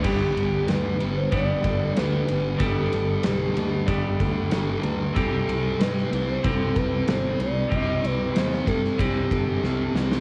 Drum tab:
CC |x---------------|----------------|----------------|----------------|
RD |x-x-x-x-x-x-x-x-|x-x-x-x-x-x-x-x-|x-x-x-x-x-x-x-x-|x-x-x-x-x-x-----|
SD |----o-------o---|----o-------o---|----oo------o---|----oo-o----o-oo|
BD |o-------o-o-----|o-------o-o-----|o-------o-o-----|o-----o-o-o-----|